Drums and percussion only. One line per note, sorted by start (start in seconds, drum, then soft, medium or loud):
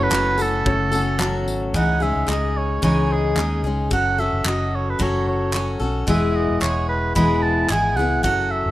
0.12 clap loud
0.39 tambourine medium
0.66 kick loud
0.93 tambourine medium
1.20 clap loud
1.48 tambourine medium
1.74 kick loud
2.29 clap loud
2.83 kick loud
3.37 clap medium
3.91 kick loud
4.46 clap loud
5.00 kick loud
5.53 clap medium
6.08 kick loud
6.62 clap loud
7.16 kick loud
7.70 clap loud
8.24 kick loud